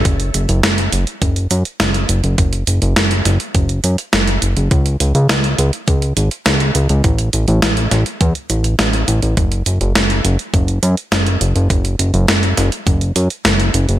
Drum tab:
HH |xxxxxxxxxxxxxxxx|xxxxxxxxxxxxxxxx|xxxxxxxxxxxxxxxx|xxxxxxxxxxxxxxxx|
SD |----o-------o---|----o-o-----o---|----o-------o---|----o-o-----o---|
BD |o-------o-------|o-------o-------|o-------o-------|o-------o-------|

HH |xxxxxxxxxxxxxxxx|xxxxxxxxxxxxxxxx|
SD |----o-------o---|----o-o-----o---|
BD |o-------o-------|o-------o-------|